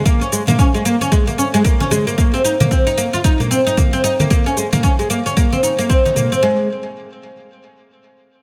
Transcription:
0.06 0.21 A#3 medium
0.06 kick medium
0.06 cabasa soft
0.21 0.31 C#4 medium
0.21 cabasa soft
0.32 0.41 G#3 medium
0.32 cabasa medium
0.47 0.58 A#3 medium
0.47 muted conga medium
0.47 high conga medium
0.47 low conga medium
0.47 cabasa soft
0.59 0.68 C#4 medium
0.59 kick loud
0.59 cabasa soft
0.74 0.85 G#3 medium
0.74 cabasa soft
0.85 0.94 A#3 medium
0.85 cabasa medium
1.01 1.11 C#4 medium
1.01 high conga soft
1.01 cabasa soft
1.12 1.27 G#3 loud
1.12 kick medium
1.12 cabasa soft
1.27 1.37 A#3 medium
1.27 muted conga soft
1.27 high conga soft
1.27 cabasa soft
1.38 1.47 C#4 medium
1.38 cabasa medium
1.54 1.64 G#3 medium
1.54 cabasa soft
1.65 1.79 A#3 medium
1.65 kick loud
1.65 cabasa soft
1.80 1.91 C#4 medium
1.80 muted conga medium
1.80 cabasa soft
1.90 2.06 G#3 medium
1.90 high conga medium
1.90 cabasa medium
2.07 2.17 A#3 medium
2.07 cabasa soft
2.18 2.32 A#3 medium
2.18 kick medium
2.18 cabasa soft
2.34 2.44 C4 medium
2.34 cabasa soft
2.44 2.54 D#4 medium
2.44 cabasa medium
2.60 2.70 A#3 medium
2.60 muted conga medium
2.60 high conga medium
2.60 low conga medium
2.60 cabasa soft
2.71 2.86 C4 medium
2.71 kick loud
2.71 cabasa soft
2.87 2.97 D#4 medium
2.87 cabasa soft
2.98 3.07 A#3 medium
2.98 cabasa medium
3.13 3.20 F4 medium
3.13 high conga soft
3.13 cabasa soft
3.24 3.39 D#4 loud
3.24 kick medium
3.24 cabasa soft
3.40 3.50 A#3 medium
3.40 low conga medium
3.40 cabasa soft
3.51 3.60 C4 medium
3.51 cabasa medium
3.67 3.76 D#4 medium
3.67 cabasa soft
3.77 3.92 A#3 medium
3.77 kick medium
3.77 high conga medium
3.77 cabasa soft
3.93 4.03 C4 medium
3.93 cabasa soft
4.04 4.13 D#4 medium
4.04 cabasa medium
4.20 4.29 A#3 medium
4.20 high conga medium
4.20 cabasa soft
4.30 4.45 A#3 medium
4.30 kick medium
4.30 cabasa soft
4.46 4.56 C#4 medium
4.46 cabasa soft
4.57 4.66 G#3 medium
4.57 cabasa medium
4.72 4.82 A#3 medium
4.72 muted conga medium
4.72 high conga medium
4.72 low conga medium
4.72 cabasa soft
4.83 4.92 C#4 medium
4.83 kick medium
4.83 cabasa soft
4.99 5.09 G#3 medium
4.99 cabasa soft
5.10 5.19 A#3 medium
5.10 cabasa medium
5.26 5.36 C#4 medium
5.26 high conga soft
5.26 cabasa soft
5.37 5.52 A#3 medium
5.37 kick medium
5.37 cabasa soft
5.52 5.62 C4 medium
5.52 muted conga soft
5.52 high conga soft
5.52 cabasa soft
5.63 5.72 D#4 medium
5.63 cabasa medium
5.79 5.88 A#3 medium
5.79 cabasa soft
5.90 6.04 C4 medium
5.90 kick medium
5.90 cabasa soft
6.05 6.16 D#4 medium
6.05 muted conga medium
6.05 cabasa soft
6.16 6.30 A#3 medium
6.16 high conga soft
6.16 low conga medium
6.16 cabasa medium
6.32 6.42 C4 medium
6.32 cabasa soft
6.43 6.67 G#3 medium

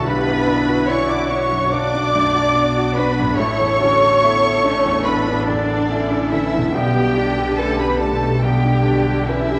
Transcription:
0.00 3.33 B2 medium
0.00 3.83 D3 medium
0.00 0.54 D4 medium
0.00 3.37 F#4 medium
0.00 3.92 B4 medium
0.00 0.63 F#5 medium
0.04 3.34 B1 medium
0.04 1.68 B1 medium
0.04 0.87 B3 loud
0.04 0.90 D4 loud
0.04 1.71 E4 medium
0.04 0.46 G4 medium
0.04 0.88 B4 loud
0.04 0.61 B5 medium
0.04 0.89 B5 loud
0.27 0.60 F#2 medium
0.46 0.80 D4 medium
0.46 2.52 F#4 medium
0.68 1.01 F#4 medium
0.88 1.09 C#4 loud
0.88 1.44 E4 medium
0.88 1.10 C#5 loud
0.88 1.22 D5 medium
0.88 1.11 C#6 loud
0.88 1.10 C#6 loud
1.09 1.30 D4 loud
1.09 1.43 F#4 medium
1.09 1.30 D5 loud
1.09 1.32 D6 medium
1.09 1.31 D6 medium
1.30 1.64 D4 medium
1.30 1.71 C#5 medium
1.30 1.72 C#5 loud
1.30 1.73 C#6 loud
1.30 1.72 C#6 medium
1.30 1.73 C#6 loud
1.51 1.85 F#2 medium
1.70 3.35 B1 medium
1.70 2.52 D4 medium
1.70 2.96 D4 loud
1.70 2.15 D4 medium
1.70 2.97 D5 loud
1.70 2.96 D6 loud
1.70 2.97 D6 loud
1.94 2.26 D4 medium
2.14 2.47 F#2 medium
2.14 2.56 A3 medium
2.34 2.68 F#4 medium
2.53 2.98 B3 medium
2.53 3.36 D4 medium
2.53 3.36 F#4 medium
2.53 2.89 D5 medium
2.77 3.10 F#4 medium
2.96 3.38 B3 loud
2.96 3.41 D4 medium
2.96 3.30 D4 medium
2.96 3.38 B4 loud
2.96 3.38 B5 medium
3.19 3.39 F#2 medium
3.19 6.69 A2 medium
3.25 7.15 E4 medium
3.29 6.73 A4 medium
3.34 3.79 E4 medium
3.34 5.88 A4 medium
3.34 5.02 C#5 loud
3.34 6.76 E5 medium
3.38 6.70 A1 medium
3.38 5.02 A1 medium
3.38 3.82 E4 loud
3.38 5.02 C#6 loud
3.38 5.06 C#6 loud
3.38 5.07 C#6 loud
3.60 3.93 E2 medium
3.79 4.14 D3 medium
3.79 4.25 C#4 medium
3.79 4.21 F#4 medium
4.02 4.35 A4 medium
4.21 4.67 B3 medium
4.21 4.63 E4 medium
4.21 4.56 E5 medium
4.44 4.77 A4 medium
4.63 5.09 A3 medium
4.63 5.05 C#4 medium
4.63 4.98 D4 medium
4.86 5.19 E2 medium
5.04 6.71 A1 medium
5.04 5.48 B3 medium
5.04 5.89 D4 medium
5.04 5.90 D4 loud
5.04 5.48 B4 loud
5.04 5.48 B5 loud
5.04 5.49 B5 medium
5.04 5.48 B5 medium
5.28 5.61 D4 medium
5.47 5.82 E2 medium
5.47 6.32 D3 medium
5.47 6.32 D4 loud
5.47 6.32 D5 medium
5.47 6.34 D5 loud
5.47 6.33 D5 loud
5.70 6.03 A4 medium
5.89 6.77 C#4 loud
5.89 6.72 E4 medium
5.89 6.73 A4 medium
5.89 6.24 E5 medium
6.12 6.45 A4 medium
6.32 6.66 D3 medium
6.32 6.75 E3 loud
6.32 6.74 E4 loud
6.32 6.74 E5 loud
6.32 6.76 E5 medium
6.32 6.75 E5 medium
6.55 6.75 E2 medium
6.55 9.60 B2 medium
6.61 9.60 B3 medium
6.65 9.60 G4 medium
6.70 8.37 D3 medium
6.70 8.37 G4 medium
6.70 9.60 B4 medium
6.74 9.60 B1 medium
6.74 8.38 B1 medium
6.74 7.41 G3 loud
6.74 7.19 B3 loud
6.74 7.58 G4 loud
6.74 7.58 G5 medium
6.74 7.31 G5 loud
6.74 7.57 G5 loud
6.96 7.29 B2 medium
7.17 7.60 D4 medium
7.17 7.50 D4 medium
7.38 7.71 G4 medium
7.57 7.79 A3 medium
7.57 8.14 C#4 medium
7.57 7.79 A4 loud
7.57 7.92 B4 medium
7.57 7.79 A5 loud
7.57 7.81 A5 loud
7.57 7.79 A5 medium
7.79 8.00 B3 medium
7.79 8.12 G4 medium
7.79 8.00 B4 medium
7.79 8.00 B5 medium
7.79 8.02 B5 medium
7.79 8.00 B5 medium
7.99 8.43 A3 medium
7.99 8.34 D4 medium
7.99 8.42 A4 medium
7.99 8.41 A5 medium
7.99 8.44 A5 medium
7.99 8.42 A5 medium
8.21 8.55 B2 soft
8.41 9.60 B1 medium
8.41 9.60 D3 medium
8.41 9.28 G3 medium
8.41 8.86 B3 medium
8.41 9.27 G4 loud
8.41 9.60 G4 medium
8.41 9.27 G5 medium
8.41 9.30 G5 medium
8.41 9.28 G5 medium
8.64 8.98 D4 medium
8.84 9.19 B2 medium
8.84 9.26 D4 medium
9.07 9.41 G4 medium
9.27 9.60 E3 loud
9.27 9.60 C#4 medium
9.27 9.60 E4 loud
9.27 9.60 B4 medium
9.27 9.60 E5 medium
9.51 9.60 G4 medium

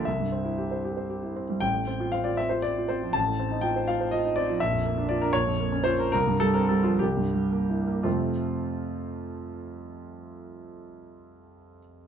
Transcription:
0.05 1.59 C2 soft
0.05 0.83 E5 medium
0.20 0.40 G2 soft
0.32 0.52 C4 soft
0.45 0.65 E4 soft
0.58 0.78 G4 soft
0.71 0.92 C5 soft
0.85 1.05 G4 soft
0.97 1.18 C5 soft
1.10 1.31 G4 soft
1.23 1.44 E4 soft
1.36 1.57 C4 soft
1.49 1.62 G3 soft
1.60 3.10 A1 soft
1.60 2.12 G5 medium
1.74 1.95 A2 soft
1.87 2.08 C4 soft
2.00 2.21 F4 soft
2.12 2.34 C4 soft
2.12 2.25 F5 medium
2.24 2.46 F4 soft
2.24 2.38 D5 medium
2.37 2.59 C4 soft
2.37 2.51 E5 medium
2.49 2.71 F4 soft
2.49 2.63 C5 soft
2.62 2.84 C4 soft
2.62 2.88 D5 medium
2.78 2.97 F4 soft
2.88 3.10 C4 soft
2.88 3.14 C5 medium
3.03 3.15 F3 soft
3.13 4.57 A1 soft
3.13 3.62 A5 medium
3.27 3.46 A2 soft
3.40 3.58 C4 soft
3.51 3.70 D#4 soft
3.61 3.82 F4 soft
3.61 3.87 G5 medium
3.76 3.95 C5 soft
3.88 4.08 F4 soft
3.88 4.12 F5 medium
4.01 4.20 C5 soft
4.11 4.32 F4 soft
4.11 4.36 D#5 medium
4.25 4.44 D#4 soft
4.36 4.56 C4 soft
4.36 4.60 D5 medium
4.49 4.61 F3 soft
4.60 5.32 A#1 medium
4.60 5.09 E5 medium
4.73 4.92 F2 soft
4.86 5.05 A#3 soft
4.97 5.17 D4 soft
5.09 5.29 F4 soft
5.09 5.21 D5 medium
5.21 5.34 D4 soft
5.21 5.34 A#4 medium
5.33 6.10 A#1 soft
5.33 5.85 C#5 medium
5.47 5.67 F2 soft
5.60 5.80 A#3 soft
5.72 5.93 C#4 soft
5.84 6.07 F4 soft
5.84 6.12 C5 medium
5.99 6.11 A#4 soft
6.12 6.99 C2 medium
6.12 6.40 A#4 medium
6.27 6.50 G2 soft
6.40 6.64 G3 soft
6.40 6.55 A4 medium
6.54 6.79 C4 soft
6.54 6.69 A#4 medium
6.69 6.95 G3 soft
6.69 6.84 A4 medium
6.84 7.01 F3 soft
6.84 7.00 F4 medium
6.99 8.02 C2 soft
6.99 8.05 G4 medium
7.17 7.44 G2 soft
7.34 7.62 G3 soft
7.51 7.81 A#3 soft
7.70 7.99 E4 soft
7.87 8.05 A#3 soft
8.03 11.78 F2 soft
8.03 11.78 C3 soft
8.03 11.79 A3 soft
8.03 11.79 C4 soft
8.03 11.77 F4 soft

